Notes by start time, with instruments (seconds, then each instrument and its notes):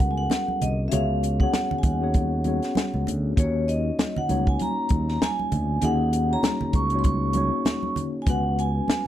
Already playing: tine electric piano B3 C#4 F#4 G#4 A4 A#4 C#5, vibraphone F#5
0.00 fingered electric bass C#2, kick, muted conga, high conga
0.11 vibraphone G#5
0.18 vibraphone F#5
0.30 snare, closed hi-hat, muted conga, high conga
0.48 high conga
0.62 fingered electric bass C2, vibraphone D#5, closed hi-hat, low conga
0.88 tine electric piano B3 C#4 F#4, vibraphone E5, closed hi-hat
0.92 fingered electric bass C#2, tine electric piano G#4 C#5, vibraphone F5, muted conga, low conga
1.23 closed hi-hat, muted conga
1.39 tine electric piano B3 C#4 F#4 G#4 C#5, vibraphone F#5, kick
1.53 snare, closed hi-hat, high conga
1.71 muted fingered electric bass stroke, low conga
1.78 vibraphone G#5
1.83 fingered electric bass D#2, vibraphone F#5, kick, closed hi-hat, high conga
2.00 tine electric piano B3 C#4 F#4 G#4 C#5
2.14 kick, closed hi-hat, high conga
2.44 tine electric piano B3 C#4 F#4 G#4 C#5, closed hi-hat, muted conga, high conga
2.62 snare, closed hi-hat
2.75 snare, closed hi-hat, muted conga, high conga
2.94 fingered electric bass C#2, high conga
3.07 fingered electric bass D2, closed hi-hat, muted conga, low conga
3.36 fingered electric bass D#2, tine electric piano A#3 C#4 D#4 F#4 C#5, vibraphone C#5, kick, closed hi-hat, low conga
3.68 vibraphone D#5, closed hi-hat, muted conga
3.99 snare, closed hi-hat, high conga
4.16 vibraphone F#5, muted fingered electric bass stroke, low conga
4.28 fingered electric bass C#2, tine electric piano A#3 C#4 D#4 F#4 C#5, closed hi-hat, muted conga, high conga
4.47 vibraphone G#5, kick
4.59 vibraphone A#5, closed hi-hat, muted conga, high conga
4.89 fingered electric bass D#2, kick, closed hi-hat, muted conga, high conga
5.09 vibraphone A#5, snare
5.22 vibraphone G#5, snare, closed hi-hat, muted conga, high conga
5.39 high conga
5.52 fingered electric bass D2, closed hi-hat, muted conga, low conga
5.81 fingered electric bass D#2, tine electric piano A#3 C#4 D#4 F#4 G#4, vibraphone F#5, closed hi-hat, low conga
6.13 closed hi-hat, muted conga
6.29 tine electric piano A#3 C#4 D#4 F#4 C#5, vibraphone A#5
6.43 snare, closed hi-hat, muted conga, high conga
6.61 muted fingered electric bass stroke, low conga
6.73 fingered electric bass C#2, vibraphone C#6, kick, closed hi-hat, muted conga, high conga
6.90 tine electric piano A#3 C#4 D#4, closed hi-hat
6.94 tine electric piano F#4 C#5
6.99 vibraphone C6
7.04 vibraphone C#6, kick, closed hi-hat, muted conga, high conga
7.33 tine electric piano A#3 C#4 D#4 F#4, closed hi-hat, muted conga, high conga
7.37 tine electric piano C#5
7.65 snare, closed hi-hat, muted conga, high conga
7.83 high conga
7.96 closed hi-hat, muted conga, low conga
8.22 vibraphone G#5
8.26 fingered electric bass C#2, tine electric piano G#3 B3 C#4 F#4 B4, vibraphone F#5, kick, closed hi-hat, muted conga, low conga
8.59 vibraphone G#5, closed hi-hat
8.88 snare, closed hi-hat, high conga